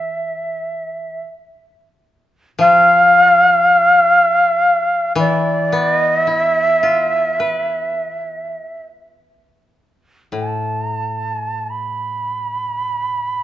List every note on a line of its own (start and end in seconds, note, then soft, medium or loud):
0.00 1.22 E3 medium
0.00 1.24 E5 medium
2.59 5.89 F3 soft
2.59 5.13 F5 loud
5.15 8.53 E3 medium
5.15 5.84 D5 loud
5.72 7.97 B3 soft
5.84 6.26 D#5 loud
6.26 8.56 E4 soft
6.26 8.84 E5 loud
6.83 9.16 F4 soft
7.40 9.75 B4 soft
10.32 13.43 A2 soft
10.39 10.83 A5 medium
10.83 10.95 A#5 medium
10.95 11.08 A5 medium
11.08 11.20 A#5 medium
11.20 11.71 A5 medium
11.70 13.43 B5 medium